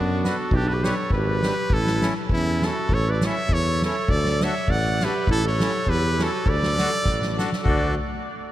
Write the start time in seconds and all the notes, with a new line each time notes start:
Already playing: F#2 B3 D4
0.23 D4 F#4 B4, snare, hi-hat pedal
0.27 F#4 A4
0.51 B1 G4, kick
0.56 D4
0.68 B4
0.74 G4
0.82 D4 G4 B4 C#5, snare, hi-hat pedal
0.88 A4
1.10 G#1 B4, kick
1.16 G4
1.43 D4 G4 B4, snare, hi-hat pedal
1.70 A1 A4, kick
1.74 E4
1.86 snare
2.01 C#4 E4 A4, snare, hi-hat pedal
2.29 E2 C#4 E4, kick
2.62 C#4 E4 A4, snare, hi-hat pedal
2.66 F#4
2.89 A1, kick
2.94 A4 C#5
3.09 B4 D5
3.21 C#4 E4 A4 C#5, snare, hi-hat pedal
3.26 E5
3.49 E2 A4 C#5, kick
3.82 C#4 E4 A4 C#5, snare, hi-hat pedal
4.08 D2 A4 D5, kick
4.25 snare
4.41 D4 F#4 A4 C#5 E5, snare, hi-hat pedal
4.55 snare
4.68 A1 D5 F#5, kick
5.00 D4 F#4 A4 B4, snare, hi-hat pedal
5.05 G4
5.27 A1 E4, kick
5.31 A4
5.45 A4 C#5
5.60 C#4 E4 A4, snare, hi-hat pedal
5.87 E2 G4 B4, kick
6.18 C#4 E4 F#4 A4, snare, hi-hat pedal
6.23 A4
6.46 D2 A4 D5, kick
6.63 snare
6.77 D4 F#4 A4, snare, hi-hat pedal
7.05 A1, kick, snare
7.22 snare
7.38 D4 F#4 A4, snare, hi-hat pedal
7.52 snare
7.63 D2 A3 D4 F#4 A4 D5, kick, floor tom, crash